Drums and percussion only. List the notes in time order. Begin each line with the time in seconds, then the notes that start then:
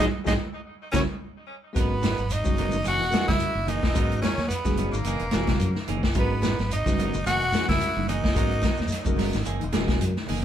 0.02 high conga
0.27 kick, snare, high conga, shekere
0.94 kick, snare, high conga, shekere
1.76 kick, closed hi-hat, shekere
2.03 snare, closed hi-hat, high conga, shekere
2.18 shekere
2.30 closed hi-hat, high conga, shekere
2.45 kick, high conga, shekere
2.57 closed hi-hat, high conga, low conga, shekere
2.72 shekere
2.85 closed hi-hat, high conga, shekere
3.02 closed hi-hat
3.12 snare, closed hi-hat, high conga, shekere
3.27 kick, snare, closed hi-hat, high conga, shekere
3.39 closed hi-hat, shekere
3.67 closed hi-hat, low conga, shekere
3.83 kick, snare
3.95 kick, closed hi-hat, shekere
4.12 closed hi-hat
4.22 snare, closed hi-hat, high conga, shekere
4.37 snare, low conga, shekere
4.50 closed hi-hat, high conga, shekere
4.65 kick, snare, high conga, shekere
4.77 closed hi-hat, low conga, shekere
4.94 shekere
5.04 closed hi-hat, shekere
5.19 closed hi-hat
5.31 snare, closed hi-hat, high conga, shekere
5.47 kick, snare, closed hi-hat, high conga, shekere
5.60 closed hi-hat, shekere
5.75 snare
5.88 closed hi-hat, low conga, shekere
6.03 kick, snare
6.14 kick, closed hi-hat, high conga, shekere
6.42 snare, closed hi-hat, high conga, shekere
6.57 snare, low conga, shekere
6.71 closed hi-hat, high conga, shekere
6.86 kick, snare, high conga, shekere
6.99 closed hi-hat, high conga, low conga, shekere
7.14 shekere
7.26 snare, closed hi-hat, high conga, shekere
7.42 closed hi-hat
7.52 snare, closed hi-hat, high conga, shekere
7.68 kick, snare, closed hi-hat, high conga, shekere
7.80 closed hi-hat, shekere
7.96 high conga
8.07 closed hi-hat, low conga, shekere
8.24 kick, snare
8.36 kick, snare, closed hi-hat, shekere
8.51 closed hi-hat
8.62 kick, snare, closed hi-hat, high conga, shekere
8.77 snare, low conga, shekere
8.88 closed hi-hat, high conga, shekere
8.92 snare
9.05 kick, high conga, shekere
9.16 snare, open hi-hat, high conga, low conga, shekere
9.33 snare, shekere
9.44 closed hi-hat, high conga, shekere
9.61 closed hi-hat
9.73 snare, closed hi-hat, high conga, shekere
9.87 kick, snare, closed hi-hat, high conga, shekere
10.01 closed hi-hat, shekere
10.16 snare
10.27 open hi-hat, low conga, shekere